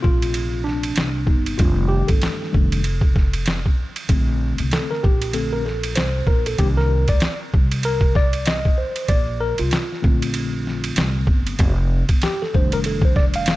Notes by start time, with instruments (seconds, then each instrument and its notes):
Already playing: tine electric piano C3 A3 C4
0.02 upright bass A#1, tine electric piano F4, kick
0.22 ride
0.34 ride
0.64 tine electric piano D4, snare
0.83 ride
0.96 upright bass C2, snare, hi-hat pedal, ride
1.27 upright bass G1, tine electric piano D#4, kick
1.46 ride
1.58 upright bass F1, tine electric piano D#3 G3 A3 D4 F4, kick, ride
1.88 tine electric piano G4
2.08 upright bass G1, tine electric piano A4, kick, ride
2.22 snare, hi-hat pedal, ride
2.42 snare
2.52 upright bass F1, tine electric piano D#3 G3 A3 D4, kick
2.72 ride
2.84 ride
3.01 kick
3.16 kick, snare
3.33 ride
3.46 snare, hi-hat pedal, ride
3.66 kick
3.96 ride
4.09 upright bass A#1, tine electric piano D3 A3 C4, kick, ride
4.58 upright bass C2, ride
4.71 tine electric piano A4, snare, hi-hat pedal, ride
4.91 tine electric piano A#4, snare
5.03 upright bass A#1, tine electric piano G4, kick
5.22 ride
5.33 tine electric piano D3 A3 C4 A4, ride
5.53 tine electric piano A#4
5.65 tine electric piano A4, snare
5.83 ride
5.95 upright bass C2, tine electric piano C5, snare, hi-hat pedal, ride
6.27 upright bass A#1, tine electric piano A#4, kick
6.46 tine electric piano A4, ride
6.58 upright bass C2, tine electric piano D#3 A#3 D4 G4, kick, ride
6.77 tine electric piano A#4, snare
7.08 upright bass D2, tine electric piano D5, kick, ride
7.20 snare, hi-hat pedal, ride
7.54 upright bass C2, kick
7.71 ride
7.83 tine electric piano A#4, ride
8.01 kick
8.15 tine electric piano D5, kick, snare
8.33 ride
8.46 tine electric piano D#5, snare, hi-hat pedal, ride
8.65 kick
8.78 tine electric piano C5
8.96 ride
9.08 upright bass A#1, tine electric piano D5, kick, ride
9.40 tine electric piano A#4
9.58 upright bass C2, tine electric piano F4, ride
9.71 snare, hi-hat pedal, ride
9.92 snare
10.02 upright bass A#1, tine electric piano D3 A3 C4, kick
10.22 ride
10.34 ride
10.67 snare
10.84 ride
10.96 upright bass C2, snare, hi-hat pedal, ride
11.27 upright bass G1, kick
11.47 ride
11.59 upright bass F1, kick, ride
12.09 kick, ride
12.22 tine electric piano G4, snare, hi-hat pedal, ride
12.42 tine electric piano A4, snare
12.53 upright bass F1, tine electric piano D#3 G3 A3 D4 C5, kick
12.72 tine electric piano A#4, ride
12.84 tine electric piano A4, ride
13.02 tine electric piano C5, kick
13.16 tine electric piano D5, kick, snare
13.34 tine electric piano F5, ride
13.46 snare, hi-hat pedal, ride